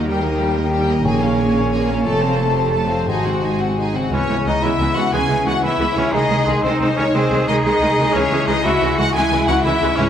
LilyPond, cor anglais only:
\new Staff \with { instrumentName = "Cor anglais" } { \time 12/8 \key aes \mixolydian \tempo 4. = 119 bes'2. des''2.~ | des''2 r4 c''2~ c''8 r8 | \key cis \minor cis'4 dis'8 e'4 fis'8 gis'4 fis'8 e'4 cis'8 | dis'4 gis8 bis8 bis8 cis'8 bis4 dis'8 dis'4. |
cis'4 dis'8 e'4 fis'8 gis'4 fis'8 e'4 cis'8 | }